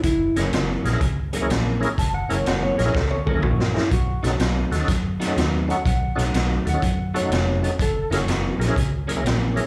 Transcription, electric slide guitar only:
0.04 0.35 E4 loud
1.99 2.14 A5 medium
2.14 2.30 F#5 medium
2.32 2.47 C#5 medium
2.48 2.63 F#5 medium
2.63 2.78 C#5 medium
2.80 2.95 C#5 medium
2.95 3.11 A4 medium
3.11 3.26 C#5 medium
3.27 3.42 A4 medium
3.43 3.59 F#4 medium
3.76 3.91 E4 medium
3.93 4.23 F#4 loud
5.71 5.86 F#5 medium
5.87 6.64 F#5 medium
6.69 7.14 F#5 medium
7.16 7.78 C#5 medium
7.82 8.12 A4 loud
8.13 9.06 F#4 medium

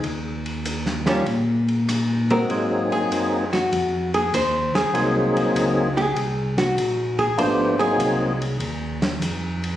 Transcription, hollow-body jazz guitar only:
1.07 1.25 D#3 medium
1.07 1.25 G3 medium
1.07 1.25 C#4 medium
1.07 1.25 F4 medium
2.31 3.07 G#3 medium
2.31 3.07 C4 medium
2.31 3.07 F#4 medium
2.31 2.92 A#4 medium
2.92 3.49 G#4 medium
3.53 4.10 F#4 medium
4.14 4.33 G#4 medium
4.35 4.74 C5 medium
4.75 5.52 G#4 medium
5.97 6.54 G#4 medium
6.58 7.15 F#4 medium
7.19 7.38 G#4 medium
7.39 7.79 C5 medium
7.79 8.56 G#4 medium

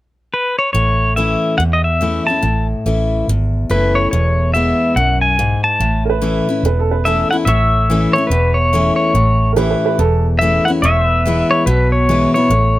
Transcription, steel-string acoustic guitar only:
0.75 1.56 A2 medium
1.17 1.58 E3 medium
1.17 1.58 A3 medium
1.17 1.59 C#4 medium
1.17 1.59 E4 medium
2.01 2.27 E3 medium
2.01 2.27 A3 medium
2.01 2.27 C#4 medium
2.01 2.27 E4 medium
2.28 2.44 C#4 soft
2.28 2.43 E4 soft
2.42 3.24 A2 medium
2.86 3.26 E3 soft
2.86 3.27 A3 medium
2.86 3.27 C#4 medium
2.86 3.27 E4 medium
3.29 4.10 E2 medium
3.69 4.10 E3 medium
3.69 4.11 A3 medium
3.69 4.11 C#4 medium
3.69 4.11 E4 medium
4.13 4.93 E2 medium
4.55 4.95 E3 medium
4.55 4.95 G#3 medium
4.55 4.95 B3 medium
4.55 4.96 E4 medium
4.97 5.37 F#2 medium
5.39 5.79 G#2 medium
5.80 6.61 A2 medium
6.21 6.47 E3 medium
6.21 6.47 A3 medium
6.21 6.47 C#4 medium
6.21 6.47 E4 medium
6.49 6.64 C#4 soft
6.49 6.63 E4 medium
7.05 7.31 E3 medium
7.05 7.31 A3 medium
7.05 7.31 C#4 medium
7.05 7.31 E4 medium
7.33 7.48 C#4 soft
7.33 7.47 E4 medium
7.47 8.28 A2 medium
7.90 8.15 E3 medium
7.90 8.16 A3 medium
7.90 8.16 C#4 medium
7.90 8.15 E4 medium
8.16 8.32 C#4 soft
8.16 8.31 E4 medium
8.31 9.12 E2 medium
8.73 9.13 E3 medium
8.73 9.14 A3 medium
8.73 9.14 C#4 medium
8.73 9.14 E4 medium
9.15 9.96 A2 medium
9.56 9.97 E3 medium
9.56 9.97 A3 medium
9.56 9.98 C#4 medium
9.56 9.98 E4 medium
9.99 10.80 E2 medium
10.41 10.66 E3 medium
10.41 10.67 A3 medium
10.41 10.67 C#4 medium
10.41 10.67 E4 medium
10.68 10.83 C#4 soft
10.68 10.82 E4 medium
10.84 11.64 E2 medium
11.26 11.65 E3 medium
11.26 11.66 G#3 medium
11.26 11.66 B3 medium
11.26 11.66 E4 medium
11.67 12.47 B2 medium
12.09 12.34 E3 medium
12.09 12.34 G#3 medium
12.09 12.35 B3 medium
12.09 12.34 E4 medium
12.36 12.51 B3 soft
12.36 12.50 E4 medium
12.51 12.79 A2 medium

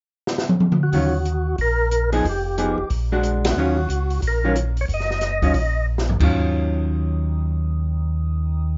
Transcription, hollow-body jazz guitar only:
0.94 1.12 D#3 soft
0.94 1.12 F#3 soft
0.94 1.13 C#4 medium
0.94 1.13 F4 soft
2.12 2.24 F3 medium
2.12 2.24 B3 medium
2.12 2.24 D#4 medium
2.12 2.24 G#4 medium
2.58 2.77 F3 soft
2.58 2.77 B3 soft
2.58 2.77 D#4 soft
2.58 2.77 G#4 medium
3.12 3.55 G#3 medium
3.12 3.55 D4 medium
3.12 3.55 F#4 medium
3.58 3.76 D#3 medium
3.58 3.76 F#3 medium
3.58 3.76 C#4 medium
3.58 3.77 F4 medium
4.44 4.55 D#3 medium
4.44 4.55 F#3 medium
4.44 4.55 C#4 medium
4.44 4.56 F4 medium
5.43 5.54 D#3 medium
5.43 5.54 F#3 medium
5.43 5.54 C#4 medium
5.43 5.54 F4 medium
6.20 8.78 D#3 soft
6.20 8.78 F#3 medium
6.20 8.78 C#4 medium
6.20 8.78 F4 medium

